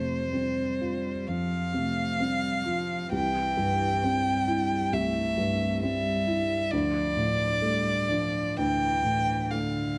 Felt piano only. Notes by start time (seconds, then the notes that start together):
Already playing: F2 C3
0.33 C4
0.81 F4
1.28 F2
1.74 C3
2.20 C4
2.66 F4
3.12 C2
3.57 G2
4.03 C4
4.47 E4
4.93 C2
5.38 G2
5.83 C4
6.27 E4
6.73 D2
7.17 A2
7.62 A3
8.10 D4
8.59 D2
9.04 A2
9.51 A3